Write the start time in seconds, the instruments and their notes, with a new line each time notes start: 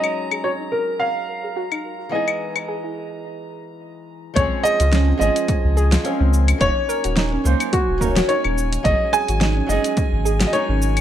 Already playing: nylon-string guitar F#3 G#3 C#4 D#4 G#4, grand piano D#5, synth texture A#5
0.04 claves
0.31 synth pluck G#4, claves
0.44 synth pluck F#4, grand piano C#5
0.60 synth pluck D#4
0.72 grand piano A#4
1.00 synth pluck C#5, grand piano F5
1.44 synth pluck G#4
1.56 synth pluck F#4
1.72 synth pluck D#4, claves
2.09 nylon-string guitar E3 G#3 B3, grand piano D#5, synth pluck D#5
2.14 nylon-string guitar D#4 G#4
2.28 claves
2.56 synth pluck B4, claves
2.68 synth pluck G#4
2.84 synth pluck E4
4.34 sub bass C#2, nylon-string guitar F3 G#3 C4, grand piano C#5, synth texture G#5, kick, closed hi-hat, shaker
4.38 nylon-string guitar C#4 G#4
4.63 synth pluck G#4, grand piano D#5, shaker
4.80 sub bass C#2, synth pluck F4, closed hi-hat, shaker
4.93 synth pluck C#4, snare, closed hi-hat, shaker
5.08 synth pluck C4
5.18 sub bass G#1, nylon-string guitar F3 G#3 C4, grand piano D#5, shaker
5.22 nylon-string guitar C#4 G#4
5.36 closed hi-hat, shaker
5.48 kick, closed hi-hat, shaker
5.65 sub bass C#2
5.77 synth pluck G#4, shaker
5.92 synth pluck F4, snare, closed hi-hat, shaker
6.04 nylon-string guitar F3 G#3 C4 C#4 A#4, synth pluck C#4, closed hi-hat, shaker
6.20 sub bass C#2, synth pluck C4
6.34 shaker
6.48 closed hi-hat, claves, shaker
6.58 sub bass D#1, nylon-string guitar F#3 A#3 C#4 D#4, grand piano C#5, kick, closed hi-hat, shaker
6.64 nylon-string guitar C#5
6.89 synth pluck A#4, shaker
7.04 sub bass D#1, synth pluck F#4, closed hi-hat, shaker
7.17 synth pluck D#4, snare, closed hi-hat, shaker
7.33 synth pluck C#4
7.44 sub bass C#2, nylon-string guitar F#3 A#3 C#4 D#4 C5, shaker
7.60 closed hi-hat, claves, shaker
7.73 grand piano F#4, kick, closed hi-hat, shaker
7.89 sub bass D#1
7.98 nylon-string guitar F#3 A#3 C#4, synth pluck A#4, kick, shaker
8.02 nylon-string guitar D#4 C#5
8.16 synth pluck F#4, snare, closed hi-hat, shaker
8.28 synth pluck D#4, grand piano C#5, closed hi-hat, shaker
8.44 sub bass D#1, synth pluck C#4, claves
8.58 shaker
8.73 closed hi-hat, shaker
8.83 sub bass G#1, nylon-string guitar F#3 G#3 C#4, grand piano D#5, kick, closed hi-hat, shaker
8.87 nylon-string guitar D#4 G#4
9.13 synth pluck G#4, grand piano G#5, shaker
9.28 sub bass G#1, synth pluck F#4, closed hi-hat, shaker
9.41 synth pluck D#4, snare, closed hi-hat, shaker
9.57 synth pluck C#4
9.67 sub bass F#1, nylon-string guitar F#3 G#3 C#4, grand piano D#5, shaker
9.71 nylon-string guitar D#4 G#4
9.84 closed hi-hat, shaker
9.97 kick, closed hi-hat, shaker
10.13 sub bass G#1
10.25 synth pluck G#4, shaker
10.40 synth pluck F#4, snare, closed hi-hat, shaker
10.47 grand piano D#5
10.52 nylon-string guitar F#3 G#3 C#4 D#4 A#4, synth pluck D#4, grand piano C#5, closed hi-hat, shaker
10.69 sub bass G#1, synth pluck C#4
10.82 shaker
10.97 closed hi-hat, claves, shaker